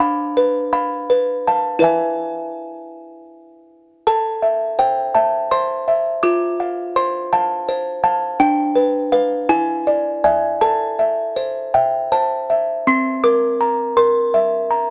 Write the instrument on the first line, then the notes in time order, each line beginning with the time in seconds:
music box
Already playing: D4
0.00 F5 B5
0.37 B4
0.73 F5 B5
1.10 B4
1.47 F5 A5
1.79 E4 B4 E5
1.84 G#5
4.07 A4 A5
4.42 E5
4.79 C5 G5
5.15 E5 A5
5.51 C5 C6
5.88 E5
6.23 F4 D6
6.60 F5
6.96 C5 C6
7.33 F5 A5
7.69 C5
8.04 F5 A5
8.40 D4 G5
8.76 B4
9.12 B4 F5
9.49 E4 G#5
9.87 D5
10.24 D5 E5 G#5
10.61 A4 A5
10.99 E5
11.36 C5
11.74 E5 G5
12.12 C5 A5
12.50 E5
12.87 C4 C6
13.24 A#4 D6
13.61 A#5
13.97 A#4 C6
14.34 E5
14.71 A#5